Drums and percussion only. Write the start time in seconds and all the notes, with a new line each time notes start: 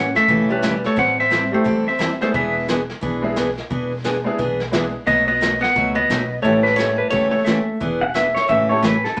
0.15 snare
0.28 brush sweep, kick
0.63 snare, hi-hat pedal
0.84 snare
0.97 brush sweep, kick
1.32 snare, hi-hat pedal
1.66 brush sweep, kick
2.00 snare, hi-hat pedal
2.21 snare
2.34 brush sweep, kick
2.69 snare, hi-hat pedal
2.90 snare
3.03 brush sweep, kick
3.36 snare, hi-hat pedal
3.58 snare
3.70 brush sweep, kick
4.05 snare, hi-hat pedal
4.39 brush sweep, kick
4.60 snare
4.73 snare, hi-hat pedal
5.08 brush sweep, kick
5.42 snare, hi-hat pedal
5.63 snare
5.76 brush sweep, kick
6.10 snare, hi-hat pedal
6.45 brush sweep, kick
6.66 snare
6.79 snare, hi-hat pedal
7.13 brush sweep, kick
7.47 snare, hi-hat pedal
7.81 brush sweep, kick
8.15 snare, hi-hat pedal
8.36 snare
8.49 brush sweep, kick
8.84 snare, hi-hat pedal
9.05 snare